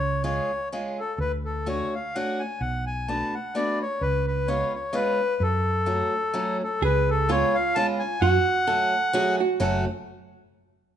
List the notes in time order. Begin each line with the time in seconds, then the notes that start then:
Already playing: C#2 C#5
0.24 G#3 C#4 F4 G#4 C#5
0.72 G#3 C#4 F4 G#4
0.99 A4
1.18 D2 B4
1.45 A4
1.66 A3 C#4 D4 F#4 C#5
1.95 F5
2.15 A3 C#4 D4 F#4 F#5
2.39 G#5
2.61 B1 F#5
2.86 G#5
3.08 A3 B3 D4 F#4 A5
3.34 F#5
3.55 A3 B3 D4 F#4 D5
3.82 C#5
4.01 C#2 B4
4.27 B4
4.48 G#3 B3 C#4 F4 C#5
4.75 C#5
4.93 G#3 B3 C#4 F4 B4
5.40 F#2 A4
5.86 F#3 A3 C#4 F#4
6.34 F#3 A3 C#4 F#4
6.64 A4
6.82 C#2 G#4 B4
7.10 A4
7.29 G#3 B3 C#4 F4 C#5
7.55 F5
7.75 G#3 B3 C#4 F4 A5
7.99 G#5
8.21 F#2 F#4 F#5
8.67 F#3 A3 C#4 F#4 A4
9.13 F#3 A3 C#4 F#4 G#4
9.40 F#4
9.60 F#1 F#3 A3 C#4 F#4 A4 F#5